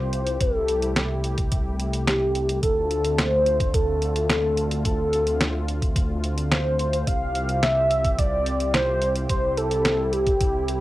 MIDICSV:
0, 0, Header, 1, 5, 480
1, 0, Start_track
1, 0, Key_signature, -1, "minor"
1, 0, Tempo, 555556
1, 351, Time_signature, 4, 2, 24, 8
1, 9336, End_track
2, 0, Start_track
2, 0, Title_t, "Soft synth lead"
2, 0, Program_c, 0, 80
2, 0, Note_on_c, 0, 72, 108
2, 355, Note_on_c, 0, 69, 100
2, 368, Note_off_c, 0, 72, 0
2, 1073, Note_off_c, 0, 69, 0
2, 1793, Note_on_c, 0, 67, 92
2, 2238, Note_off_c, 0, 67, 0
2, 2274, Note_on_c, 0, 69, 111
2, 2754, Note_on_c, 0, 72, 115
2, 2767, Note_off_c, 0, 69, 0
2, 3233, Note_on_c, 0, 69, 109
2, 3246, Note_off_c, 0, 72, 0
2, 3708, Note_off_c, 0, 69, 0
2, 3714, Note_on_c, 0, 69, 100
2, 4159, Note_off_c, 0, 69, 0
2, 4196, Note_on_c, 0, 69, 98
2, 4879, Note_off_c, 0, 69, 0
2, 5631, Note_on_c, 0, 72, 108
2, 6110, Note_on_c, 0, 77, 123
2, 6123, Note_off_c, 0, 72, 0
2, 6585, Note_off_c, 0, 77, 0
2, 6590, Note_on_c, 0, 76, 112
2, 7071, Note_on_c, 0, 74, 116
2, 7084, Note_off_c, 0, 76, 0
2, 7546, Note_off_c, 0, 74, 0
2, 7551, Note_on_c, 0, 72, 101
2, 7998, Note_off_c, 0, 72, 0
2, 8030, Note_on_c, 0, 72, 109
2, 8271, Note_on_c, 0, 69, 101
2, 8284, Note_off_c, 0, 72, 0
2, 8752, Note_on_c, 0, 67, 106
2, 8765, Note_off_c, 0, 69, 0
2, 9336, Note_off_c, 0, 67, 0
2, 9336, End_track
3, 0, Start_track
3, 0, Title_t, "Analog synth pad"
3, 0, Program_c, 1, 89
3, 0, Note_on_c, 1, 48, 79
3, 0, Note_on_c, 1, 60, 70
3, 0, Note_on_c, 1, 65, 69
3, 0, Note_on_c, 1, 67, 82
3, 332, Note_off_c, 1, 60, 0
3, 332, Note_off_c, 1, 65, 0
3, 332, Note_off_c, 1, 67, 0
3, 352, Note_on_c, 1, 57, 70
3, 352, Note_on_c, 1, 64, 70
3, 352, Note_on_c, 1, 67, 83
3, 2236, Note_off_c, 1, 48, 0
3, 2252, Note_off_c, 1, 64, 0
3, 2252, Note_off_c, 1, 67, 0
3, 2272, Note_on_c, 1, 60, 71
3, 2272, Note_on_c, 1, 65, 85
3, 2273, Note_on_c, 1, 50, 78
3, 6077, Note_off_c, 1, 50, 0
3, 6077, Note_off_c, 1, 57, 0
3, 6112, Note_on_c, 1, 48, 78
3, 6113, Note_on_c, 1, 67, 85
3, 7997, Note_off_c, 1, 65, 0
3, 8031, Note_on_c, 1, 64, 70
3, 9336, Note_off_c, 1, 48, 0
3, 9336, Note_off_c, 1, 60, 0
3, 9336, Note_off_c, 1, 64, 0
3, 9336, Note_off_c, 1, 67, 0
3, 9336, End_track
4, 0, Start_track
4, 0, Title_t, "Detuned saw bass"
4, 0, Program_c, 2, 39
4, 0, Note_on_c, 2, 36, 86
4, 327, Note_off_c, 2, 36, 0
4, 351, Note_on_c, 2, 36, 89
4, 2247, Note_off_c, 2, 36, 0
4, 2272, Note_on_c, 2, 38, 86
4, 6087, Note_off_c, 2, 38, 0
4, 6110, Note_on_c, 2, 36, 86
4, 8007, Note_off_c, 2, 36, 0
4, 8030, Note_on_c, 2, 36, 91
4, 9336, Note_off_c, 2, 36, 0
4, 9336, End_track
5, 0, Start_track
5, 0, Title_t, "Drums"
5, 111, Note_on_c, 9, 42, 66
5, 197, Note_off_c, 9, 42, 0
5, 230, Note_on_c, 9, 42, 66
5, 316, Note_off_c, 9, 42, 0
5, 350, Note_on_c, 9, 42, 94
5, 351, Note_on_c, 9, 36, 117
5, 436, Note_off_c, 9, 42, 0
5, 437, Note_off_c, 9, 36, 0
5, 591, Note_on_c, 9, 42, 64
5, 677, Note_off_c, 9, 42, 0
5, 711, Note_on_c, 9, 42, 63
5, 798, Note_off_c, 9, 42, 0
5, 831, Note_on_c, 9, 38, 115
5, 831, Note_on_c, 9, 42, 88
5, 917, Note_off_c, 9, 38, 0
5, 917, Note_off_c, 9, 42, 0
5, 1070, Note_on_c, 9, 42, 65
5, 1157, Note_off_c, 9, 42, 0
5, 1190, Note_on_c, 9, 42, 65
5, 1191, Note_on_c, 9, 36, 104
5, 1276, Note_off_c, 9, 42, 0
5, 1278, Note_off_c, 9, 36, 0
5, 1311, Note_on_c, 9, 36, 120
5, 1311, Note_on_c, 9, 42, 90
5, 1397, Note_off_c, 9, 42, 0
5, 1398, Note_off_c, 9, 36, 0
5, 1551, Note_on_c, 9, 42, 64
5, 1638, Note_off_c, 9, 42, 0
5, 1671, Note_on_c, 9, 42, 67
5, 1758, Note_off_c, 9, 42, 0
5, 1792, Note_on_c, 9, 38, 119
5, 1792, Note_on_c, 9, 42, 93
5, 1879, Note_off_c, 9, 38, 0
5, 1879, Note_off_c, 9, 42, 0
5, 2031, Note_on_c, 9, 42, 66
5, 2118, Note_off_c, 9, 42, 0
5, 2152, Note_on_c, 9, 42, 66
5, 2239, Note_off_c, 9, 42, 0
5, 2271, Note_on_c, 9, 36, 118
5, 2272, Note_on_c, 9, 42, 87
5, 2358, Note_off_c, 9, 36, 0
5, 2358, Note_off_c, 9, 42, 0
5, 2512, Note_on_c, 9, 42, 67
5, 2598, Note_off_c, 9, 42, 0
5, 2631, Note_on_c, 9, 42, 64
5, 2718, Note_off_c, 9, 42, 0
5, 2751, Note_on_c, 9, 38, 116
5, 2751, Note_on_c, 9, 42, 88
5, 2838, Note_off_c, 9, 38, 0
5, 2838, Note_off_c, 9, 42, 0
5, 2992, Note_on_c, 9, 42, 65
5, 3079, Note_off_c, 9, 42, 0
5, 3111, Note_on_c, 9, 36, 104
5, 3113, Note_on_c, 9, 42, 65
5, 3197, Note_off_c, 9, 36, 0
5, 3199, Note_off_c, 9, 42, 0
5, 3231, Note_on_c, 9, 36, 122
5, 3232, Note_on_c, 9, 42, 91
5, 3317, Note_off_c, 9, 36, 0
5, 3319, Note_off_c, 9, 42, 0
5, 3473, Note_on_c, 9, 42, 64
5, 3559, Note_off_c, 9, 42, 0
5, 3593, Note_on_c, 9, 42, 64
5, 3679, Note_off_c, 9, 42, 0
5, 3711, Note_on_c, 9, 38, 122
5, 3711, Note_on_c, 9, 42, 91
5, 3798, Note_off_c, 9, 38, 0
5, 3798, Note_off_c, 9, 42, 0
5, 3952, Note_on_c, 9, 42, 67
5, 4038, Note_off_c, 9, 42, 0
5, 4072, Note_on_c, 9, 42, 65
5, 4158, Note_off_c, 9, 42, 0
5, 4191, Note_on_c, 9, 36, 116
5, 4192, Note_on_c, 9, 42, 88
5, 4277, Note_off_c, 9, 36, 0
5, 4279, Note_off_c, 9, 42, 0
5, 4433, Note_on_c, 9, 42, 62
5, 4520, Note_off_c, 9, 42, 0
5, 4553, Note_on_c, 9, 42, 61
5, 4639, Note_off_c, 9, 42, 0
5, 4672, Note_on_c, 9, 38, 112
5, 4672, Note_on_c, 9, 42, 85
5, 4759, Note_off_c, 9, 38, 0
5, 4759, Note_off_c, 9, 42, 0
5, 4913, Note_on_c, 9, 42, 60
5, 5000, Note_off_c, 9, 42, 0
5, 5030, Note_on_c, 9, 36, 105
5, 5033, Note_on_c, 9, 42, 60
5, 5117, Note_off_c, 9, 36, 0
5, 5119, Note_off_c, 9, 42, 0
5, 5150, Note_on_c, 9, 36, 120
5, 5152, Note_on_c, 9, 42, 86
5, 5237, Note_off_c, 9, 36, 0
5, 5238, Note_off_c, 9, 42, 0
5, 5390, Note_on_c, 9, 42, 63
5, 5477, Note_off_c, 9, 42, 0
5, 5511, Note_on_c, 9, 42, 63
5, 5597, Note_off_c, 9, 42, 0
5, 5630, Note_on_c, 9, 38, 118
5, 5630, Note_on_c, 9, 42, 86
5, 5717, Note_off_c, 9, 38, 0
5, 5717, Note_off_c, 9, 42, 0
5, 5870, Note_on_c, 9, 42, 63
5, 5956, Note_off_c, 9, 42, 0
5, 5990, Note_on_c, 9, 42, 60
5, 6076, Note_off_c, 9, 42, 0
5, 6110, Note_on_c, 9, 36, 111
5, 6111, Note_on_c, 9, 42, 83
5, 6197, Note_off_c, 9, 36, 0
5, 6197, Note_off_c, 9, 42, 0
5, 6351, Note_on_c, 9, 42, 61
5, 6438, Note_off_c, 9, 42, 0
5, 6470, Note_on_c, 9, 42, 57
5, 6557, Note_off_c, 9, 42, 0
5, 6590, Note_on_c, 9, 38, 110
5, 6590, Note_on_c, 9, 42, 83
5, 6677, Note_off_c, 9, 38, 0
5, 6677, Note_off_c, 9, 42, 0
5, 6831, Note_on_c, 9, 42, 60
5, 6917, Note_off_c, 9, 42, 0
5, 6950, Note_on_c, 9, 36, 98
5, 6950, Note_on_c, 9, 42, 60
5, 7036, Note_off_c, 9, 42, 0
5, 7037, Note_off_c, 9, 36, 0
5, 7070, Note_on_c, 9, 36, 114
5, 7071, Note_on_c, 9, 42, 83
5, 7156, Note_off_c, 9, 36, 0
5, 7157, Note_off_c, 9, 42, 0
5, 7310, Note_on_c, 9, 42, 60
5, 7397, Note_off_c, 9, 42, 0
5, 7431, Note_on_c, 9, 42, 60
5, 7517, Note_off_c, 9, 42, 0
5, 7550, Note_on_c, 9, 38, 111
5, 7550, Note_on_c, 9, 42, 86
5, 7636, Note_off_c, 9, 38, 0
5, 7636, Note_off_c, 9, 42, 0
5, 7789, Note_on_c, 9, 42, 62
5, 7876, Note_off_c, 9, 42, 0
5, 7909, Note_on_c, 9, 42, 61
5, 7996, Note_off_c, 9, 42, 0
5, 8030, Note_on_c, 9, 36, 108
5, 8030, Note_on_c, 9, 42, 81
5, 8116, Note_off_c, 9, 42, 0
5, 8117, Note_off_c, 9, 36, 0
5, 8272, Note_on_c, 9, 42, 62
5, 8358, Note_off_c, 9, 42, 0
5, 8390, Note_on_c, 9, 42, 60
5, 8477, Note_off_c, 9, 42, 0
5, 8510, Note_on_c, 9, 38, 108
5, 8510, Note_on_c, 9, 42, 84
5, 8596, Note_off_c, 9, 38, 0
5, 8596, Note_off_c, 9, 42, 0
5, 8751, Note_on_c, 9, 42, 60
5, 8837, Note_off_c, 9, 42, 0
5, 8870, Note_on_c, 9, 36, 99
5, 8870, Note_on_c, 9, 42, 59
5, 8956, Note_off_c, 9, 42, 0
5, 8957, Note_off_c, 9, 36, 0
5, 8990, Note_on_c, 9, 36, 113
5, 8990, Note_on_c, 9, 42, 84
5, 9077, Note_off_c, 9, 36, 0
5, 9077, Note_off_c, 9, 42, 0
5, 9230, Note_on_c, 9, 42, 61
5, 9316, Note_off_c, 9, 42, 0
5, 9336, End_track
0, 0, End_of_file